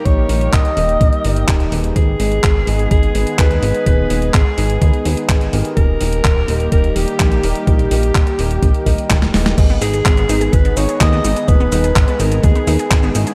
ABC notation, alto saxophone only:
X:1
M:4/4
L:1/8
Q:1/4=126
K:D#phr
V:1 name="Alto saxophone"
c2 d4 z2 | G4 G2 B2 | B2 G4 z2 | A4 A =G3 |
=G6 z2 | [K:G#m] z G3 B c d2 | B3 A G3 z |]